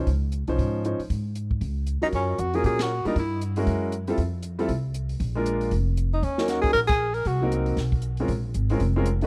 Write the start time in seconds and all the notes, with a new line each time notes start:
0.07 C#2, kick, open hi-hat
0.32 closed hi-hat
0.47 C2 F3 C#4 D#4 C5, open hi-hat
0.58 G#2, kick, open hi-hat
0.84 F3 C#4 D#4 C5, closed hi-hat
0.99 muted upright bass stroke, open hi-hat
1.10 G#2, kick, open hi-hat
1.35 closed hi-hat
1.51 kick
1.61 C#2, kick, open hi-hat
1.87 closed hi-hat
2.02 F#3 C#4 D#4 F4 A#4, muted upright bass stroke, open hi-hat
2.12 F#2 C#4, kick, open hi-hat
2.38 F2 F#4, closed hi-hat
2.54 F#3 A#3 C#4 F4 G#4 A#4, open hi-hat
2.64 A#2 G4 G#4, kick, open hi-hat
2.79 F#4, snare, ride
3.05 G3 A#3 D4 D#4 F4 A#4, muted upright bass stroke, open hi-hat
3.16 G2 E4, kick, open hi-hat
3.41 closed hi-hat
3.56 G#3 C#4 E4 F#4 A#4, open hi-hat
3.67 F#2, kick, open hi-hat
3.92 closed hi-hat
4.07 G3 C4 E4 F4 A4, open hi-hat
4.18 F2, kick, open hi-hat
4.42 closed hi-hat
4.59 G3 C4 E4 F4 A4, open hi-hat
4.68 C2, kick, open hi-hat
4.94 closed hi-hat
5.09 open hi-hat
5.20 A#1, kick, open hi-hat
5.35 G#3 A#3 D4 F4 A#4
5.46 closed hi-hat
5.61 open hi-hat
5.71 F1, kick, open hi-hat
5.97 closed hi-hat
6.14 D#4
6.23 D#2 C#4, kick, open hi-hat
6.38 F#3 A#3 C#4 D#4 A#4, snare
6.48 F#4, snare, closed hi-hat
6.62 G#4, kick, open hi-hat
6.73 A#1 A#4, kick, open hi-hat
6.87 G#4, kick, ride
7.14 A#4, open hi-hat
7.25 C2 F#4, kick, open hi-hat
7.42 F#3 A#3 C4 D#4 A#4
7.52 closed hi-hat
7.66 open hi-hat
7.77 B1, kick, snare, open hi-hat
7.92 kick
8.02 closed hi-hat
8.17 G#3 C4 C#4, open hi-hat
8.21 F4 A#4
8.28 A#1, kick, open hi-hat
8.54 G#1, closed hi-hat
8.69 G#3 C4 C#4 F4 A#4, open hi-hat
8.80 F1, kick, open hi-hat
8.96 G#3 C4 C#4 F4 A#4
9.06 closed hi-hat
9.21 A3 C#4 D#4 F#4 B4, open hi-hat